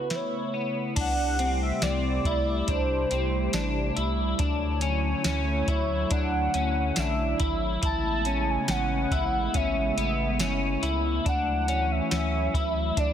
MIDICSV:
0, 0, Header, 1, 6, 480
1, 0, Start_track
1, 0, Tempo, 857143
1, 542, Time_signature, 4, 2, 24, 8
1, 7353, End_track
2, 0, Start_track
2, 0, Title_t, "Soft synth lead"
2, 0, Program_c, 0, 80
2, 0, Note_on_c, 0, 71, 87
2, 84, Note_on_c, 0, 73, 86
2, 93, Note_off_c, 0, 71, 0
2, 433, Note_off_c, 0, 73, 0
2, 558, Note_on_c, 0, 78, 113
2, 887, Note_off_c, 0, 78, 0
2, 910, Note_on_c, 0, 76, 92
2, 1018, Note_off_c, 0, 76, 0
2, 1024, Note_on_c, 0, 74, 103
2, 1506, Note_on_c, 0, 72, 93
2, 1514, Note_off_c, 0, 74, 0
2, 2224, Note_off_c, 0, 72, 0
2, 3192, Note_on_c, 0, 73, 87
2, 3410, Note_off_c, 0, 73, 0
2, 3429, Note_on_c, 0, 78, 102
2, 3913, Note_on_c, 0, 76, 99
2, 3922, Note_off_c, 0, 78, 0
2, 4267, Note_off_c, 0, 76, 0
2, 4394, Note_on_c, 0, 81, 117
2, 4762, Note_on_c, 0, 80, 102
2, 4771, Note_off_c, 0, 81, 0
2, 4872, Note_on_c, 0, 78, 106
2, 4881, Note_off_c, 0, 80, 0
2, 5356, Note_on_c, 0, 76, 92
2, 5364, Note_off_c, 0, 78, 0
2, 6069, Note_off_c, 0, 76, 0
2, 6316, Note_on_c, 0, 78, 113
2, 6672, Note_on_c, 0, 76, 103
2, 6680, Note_off_c, 0, 78, 0
2, 7272, Note_on_c, 0, 74, 90
2, 7281, Note_off_c, 0, 76, 0
2, 7353, Note_off_c, 0, 74, 0
2, 7353, End_track
3, 0, Start_track
3, 0, Title_t, "Clean electric guitar"
3, 0, Program_c, 1, 27
3, 0, Note_on_c, 1, 66, 65
3, 57, Note_off_c, 1, 66, 0
3, 59, Note_on_c, 1, 64, 67
3, 300, Note_off_c, 1, 64, 0
3, 301, Note_on_c, 1, 59, 61
3, 536, Note_off_c, 1, 59, 0
3, 538, Note_on_c, 1, 62, 102
3, 778, Note_off_c, 1, 62, 0
3, 780, Note_on_c, 1, 60, 85
3, 1017, Note_off_c, 1, 60, 0
3, 1024, Note_on_c, 1, 60, 92
3, 1263, Note_off_c, 1, 60, 0
3, 1265, Note_on_c, 1, 64, 81
3, 1503, Note_off_c, 1, 64, 0
3, 1503, Note_on_c, 1, 62, 88
3, 1740, Note_off_c, 1, 62, 0
3, 1742, Note_on_c, 1, 60, 83
3, 1980, Note_off_c, 1, 60, 0
3, 1982, Note_on_c, 1, 62, 85
3, 2220, Note_on_c, 1, 64, 78
3, 2222, Note_off_c, 1, 62, 0
3, 2460, Note_on_c, 1, 62, 96
3, 2461, Note_off_c, 1, 64, 0
3, 2697, Note_off_c, 1, 62, 0
3, 2699, Note_on_c, 1, 61, 88
3, 2935, Note_off_c, 1, 61, 0
3, 2942, Note_on_c, 1, 61, 94
3, 3181, Note_on_c, 1, 64, 84
3, 3182, Note_off_c, 1, 61, 0
3, 3421, Note_off_c, 1, 64, 0
3, 3422, Note_on_c, 1, 62, 89
3, 3661, Note_off_c, 1, 62, 0
3, 3663, Note_on_c, 1, 61, 87
3, 3901, Note_off_c, 1, 61, 0
3, 3903, Note_on_c, 1, 62, 84
3, 4142, Note_off_c, 1, 62, 0
3, 4142, Note_on_c, 1, 64, 79
3, 4377, Note_off_c, 1, 64, 0
3, 4384, Note_on_c, 1, 64, 103
3, 4623, Note_off_c, 1, 64, 0
3, 4625, Note_on_c, 1, 61, 90
3, 4859, Note_off_c, 1, 61, 0
3, 4866, Note_on_c, 1, 61, 94
3, 5104, Note_off_c, 1, 61, 0
3, 5106, Note_on_c, 1, 64, 87
3, 5344, Note_off_c, 1, 64, 0
3, 5346, Note_on_c, 1, 61, 95
3, 5584, Note_off_c, 1, 61, 0
3, 5586, Note_on_c, 1, 59, 86
3, 5823, Note_off_c, 1, 59, 0
3, 5825, Note_on_c, 1, 61, 91
3, 6064, Note_off_c, 1, 61, 0
3, 6064, Note_on_c, 1, 64, 81
3, 6303, Note_off_c, 1, 64, 0
3, 6304, Note_on_c, 1, 62, 103
3, 6541, Note_off_c, 1, 62, 0
3, 6543, Note_on_c, 1, 61, 92
3, 6776, Note_off_c, 1, 61, 0
3, 6783, Note_on_c, 1, 61, 89
3, 7022, Note_off_c, 1, 61, 0
3, 7025, Note_on_c, 1, 64, 77
3, 7263, Note_off_c, 1, 64, 0
3, 7263, Note_on_c, 1, 62, 94
3, 7353, Note_off_c, 1, 62, 0
3, 7353, End_track
4, 0, Start_track
4, 0, Title_t, "Analog synth pad"
4, 0, Program_c, 2, 89
4, 0, Note_on_c, 2, 49, 72
4, 0, Note_on_c, 2, 57, 69
4, 0, Note_on_c, 2, 59, 69
4, 0, Note_on_c, 2, 64, 67
4, 0, Note_on_c, 2, 71, 80
4, 518, Note_off_c, 2, 49, 0
4, 518, Note_off_c, 2, 59, 0
4, 518, Note_off_c, 2, 64, 0
4, 518, Note_off_c, 2, 71, 0
4, 525, Note_off_c, 2, 57, 0
4, 542, Note_on_c, 2, 57, 74
4, 543, Note_on_c, 2, 48, 79
4, 543, Note_on_c, 2, 64, 72
4, 543, Note_on_c, 2, 67, 87
4, 545, Note_on_c, 2, 55, 73
4, 2443, Note_off_c, 2, 48, 0
4, 2443, Note_off_c, 2, 57, 0
4, 2443, Note_off_c, 2, 64, 0
4, 2443, Note_off_c, 2, 67, 0
4, 2444, Note_off_c, 2, 55, 0
4, 2455, Note_on_c, 2, 73, 73
4, 2456, Note_on_c, 2, 64, 84
4, 2458, Note_on_c, 2, 54, 79
4, 2458, Note_on_c, 2, 57, 77
4, 2459, Note_on_c, 2, 50, 85
4, 4359, Note_off_c, 2, 73, 0
4, 4360, Note_off_c, 2, 54, 0
4, 4361, Note_off_c, 2, 50, 0
4, 4361, Note_off_c, 2, 57, 0
4, 4384, Note_on_c, 2, 56, 73
4, 4385, Note_on_c, 2, 59, 73
4, 4386, Note_on_c, 2, 49, 79
4, 4390, Note_on_c, 2, 57, 73
4, 6276, Note_off_c, 2, 64, 0
4, 6284, Note_off_c, 2, 56, 0
4, 6284, Note_off_c, 2, 59, 0
4, 6285, Note_off_c, 2, 49, 0
4, 6306, Note_on_c, 2, 54, 72
4, 6306, Note_on_c, 2, 64, 89
4, 6307, Note_on_c, 2, 52, 83
4, 7353, Note_off_c, 2, 52, 0
4, 7353, Note_off_c, 2, 54, 0
4, 7353, Note_off_c, 2, 57, 0
4, 7353, Note_off_c, 2, 64, 0
4, 7353, End_track
5, 0, Start_track
5, 0, Title_t, "Sub bass"
5, 0, Program_c, 3, 38
5, 540, Note_on_c, 3, 36, 118
5, 963, Note_off_c, 3, 36, 0
5, 1018, Note_on_c, 3, 36, 106
5, 1231, Note_off_c, 3, 36, 0
5, 1258, Note_on_c, 3, 36, 107
5, 1471, Note_off_c, 3, 36, 0
5, 1500, Note_on_c, 3, 36, 107
5, 1712, Note_off_c, 3, 36, 0
5, 1742, Note_on_c, 3, 36, 100
5, 1953, Note_off_c, 3, 36, 0
5, 1978, Note_on_c, 3, 33, 100
5, 2191, Note_off_c, 3, 33, 0
5, 2223, Note_on_c, 3, 36, 94
5, 2433, Note_off_c, 3, 36, 0
5, 2460, Note_on_c, 3, 38, 116
5, 2883, Note_off_c, 3, 38, 0
5, 2940, Note_on_c, 3, 38, 102
5, 3152, Note_off_c, 3, 38, 0
5, 3178, Note_on_c, 3, 38, 102
5, 3391, Note_off_c, 3, 38, 0
5, 3421, Note_on_c, 3, 38, 102
5, 3632, Note_off_c, 3, 38, 0
5, 3664, Note_on_c, 3, 38, 96
5, 3874, Note_off_c, 3, 38, 0
5, 3905, Note_on_c, 3, 35, 98
5, 4115, Note_off_c, 3, 35, 0
5, 4144, Note_on_c, 3, 32, 107
5, 4354, Note_off_c, 3, 32, 0
5, 4382, Note_on_c, 3, 33, 113
5, 4804, Note_off_c, 3, 33, 0
5, 4864, Note_on_c, 3, 33, 112
5, 5074, Note_off_c, 3, 33, 0
5, 5102, Note_on_c, 3, 33, 92
5, 5313, Note_off_c, 3, 33, 0
5, 5344, Note_on_c, 3, 33, 109
5, 5554, Note_off_c, 3, 33, 0
5, 5583, Note_on_c, 3, 33, 97
5, 5821, Note_on_c, 3, 30, 100
5, 5829, Note_off_c, 3, 33, 0
5, 6032, Note_off_c, 3, 30, 0
5, 6062, Note_on_c, 3, 37, 94
5, 6273, Note_off_c, 3, 37, 0
5, 6304, Note_on_c, 3, 38, 115
5, 6725, Note_off_c, 3, 38, 0
5, 6784, Note_on_c, 3, 38, 96
5, 6994, Note_off_c, 3, 38, 0
5, 7021, Note_on_c, 3, 38, 107
5, 7232, Note_off_c, 3, 38, 0
5, 7263, Note_on_c, 3, 38, 116
5, 7353, Note_off_c, 3, 38, 0
5, 7353, End_track
6, 0, Start_track
6, 0, Title_t, "Drums"
6, 57, Note_on_c, 9, 42, 55
6, 60, Note_on_c, 9, 38, 90
6, 113, Note_off_c, 9, 42, 0
6, 116, Note_off_c, 9, 38, 0
6, 540, Note_on_c, 9, 42, 74
6, 540, Note_on_c, 9, 49, 98
6, 541, Note_on_c, 9, 36, 112
6, 596, Note_off_c, 9, 42, 0
6, 596, Note_off_c, 9, 49, 0
6, 597, Note_off_c, 9, 36, 0
6, 779, Note_on_c, 9, 42, 55
6, 835, Note_off_c, 9, 42, 0
6, 1019, Note_on_c, 9, 42, 75
6, 1019, Note_on_c, 9, 54, 56
6, 1020, Note_on_c, 9, 38, 112
6, 1075, Note_off_c, 9, 42, 0
6, 1075, Note_off_c, 9, 54, 0
6, 1076, Note_off_c, 9, 38, 0
6, 1258, Note_on_c, 9, 36, 103
6, 1262, Note_on_c, 9, 42, 57
6, 1314, Note_off_c, 9, 36, 0
6, 1318, Note_off_c, 9, 42, 0
6, 1500, Note_on_c, 9, 36, 95
6, 1500, Note_on_c, 9, 42, 77
6, 1556, Note_off_c, 9, 36, 0
6, 1556, Note_off_c, 9, 42, 0
6, 1740, Note_on_c, 9, 42, 56
6, 1796, Note_off_c, 9, 42, 0
6, 1977, Note_on_c, 9, 42, 67
6, 1980, Note_on_c, 9, 38, 113
6, 1980, Note_on_c, 9, 54, 75
6, 2033, Note_off_c, 9, 42, 0
6, 2036, Note_off_c, 9, 38, 0
6, 2036, Note_off_c, 9, 54, 0
6, 2221, Note_on_c, 9, 42, 49
6, 2277, Note_off_c, 9, 42, 0
6, 2458, Note_on_c, 9, 42, 75
6, 2460, Note_on_c, 9, 36, 116
6, 2514, Note_off_c, 9, 42, 0
6, 2516, Note_off_c, 9, 36, 0
6, 2694, Note_on_c, 9, 42, 58
6, 2750, Note_off_c, 9, 42, 0
6, 2937, Note_on_c, 9, 42, 70
6, 2937, Note_on_c, 9, 54, 58
6, 2938, Note_on_c, 9, 38, 116
6, 2993, Note_off_c, 9, 42, 0
6, 2993, Note_off_c, 9, 54, 0
6, 2994, Note_off_c, 9, 38, 0
6, 3178, Note_on_c, 9, 36, 107
6, 3180, Note_on_c, 9, 42, 55
6, 3234, Note_off_c, 9, 36, 0
6, 3236, Note_off_c, 9, 42, 0
6, 3419, Note_on_c, 9, 42, 79
6, 3421, Note_on_c, 9, 36, 94
6, 3475, Note_off_c, 9, 42, 0
6, 3477, Note_off_c, 9, 36, 0
6, 3662, Note_on_c, 9, 42, 58
6, 3718, Note_off_c, 9, 42, 0
6, 3897, Note_on_c, 9, 42, 74
6, 3900, Note_on_c, 9, 38, 112
6, 3900, Note_on_c, 9, 54, 76
6, 3953, Note_off_c, 9, 42, 0
6, 3956, Note_off_c, 9, 38, 0
6, 3956, Note_off_c, 9, 54, 0
6, 4142, Note_on_c, 9, 42, 50
6, 4143, Note_on_c, 9, 36, 98
6, 4198, Note_off_c, 9, 42, 0
6, 4199, Note_off_c, 9, 36, 0
6, 4383, Note_on_c, 9, 36, 116
6, 4383, Note_on_c, 9, 42, 73
6, 4439, Note_off_c, 9, 36, 0
6, 4439, Note_off_c, 9, 42, 0
6, 4621, Note_on_c, 9, 42, 56
6, 4677, Note_off_c, 9, 42, 0
6, 4861, Note_on_c, 9, 42, 70
6, 4861, Note_on_c, 9, 54, 62
6, 4862, Note_on_c, 9, 38, 123
6, 4917, Note_off_c, 9, 42, 0
6, 4917, Note_off_c, 9, 54, 0
6, 4918, Note_off_c, 9, 38, 0
6, 5102, Note_on_c, 9, 36, 107
6, 5105, Note_on_c, 9, 42, 54
6, 5158, Note_off_c, 9, 36, 0
6, 5161, Note_off_c, 9, 42, 0
6, 5344, Note_on_c, 9, 42, 81
6, 5345, Note_on_c, 9, 36, 99
6, 5400, Note_off_c, 9, 42, 0
6, 5401, Note_off_c, 9, 36, 0
6, 5587, Note_on_c, 9, 42, 56
6, 5643, Note_off_c, 9, 42, 0
6, 5821, Note_on_c, 9, 42, 74
6, 5824, Note_on_c, 9, 38, 111
6, 5824, Note_on_c, 9, 54, 75
6, 5877, Note_off_c, 9, 42, 0
6, 5880, Note_off_c, 9, 38, 0
6, 5880, Note_off_c, 9, 54, 0
6, 6064, Note_on_c, 9, 42, 52
6, 6120, Note_off_c, 9, 42, 0
6, 6304, Note_on_c, 9, 36, 121
6, 6306, Note_on_c, 9, 42, 70
6, 6360, Note_off_c, 9, 36, 0
6, 6362, Note_off_c, 9, 42, 0
6, 6542, Note_on_c, 9, 42, 58
6, 6598, Note_off_c, 9, 42, 0
6, 6784, Note_on_c, 9, 42, 71
6, 6784, Note_on_c, 9, 54, 59
6, 6785, Note_on_c, 9, 38, 114
6, 6840, Note_off_c, 9, 42, 0
6, 6840, Note_off_c, 9, 54, 0
6, 6841, Note_off_c, 9, 38, 0
6, 7022, Note_on_c, 9, 36, 107
6, 7027, Note_on_c, 9, 42, 60
6, 7078, Note_off_c, 9, 36, 0
6, 7083, Note_off_c, 9, 42, 0
6, 7263, Note_on_c, 9, 36, 102
6, 7264, Note_on_c, 9, 42, 83
6, 7319, Note_off_c, 9, 36, 0
6, 7320, Note_off_c, 9, 42, 0
6, 7353, End_track
0, 0, End_of_file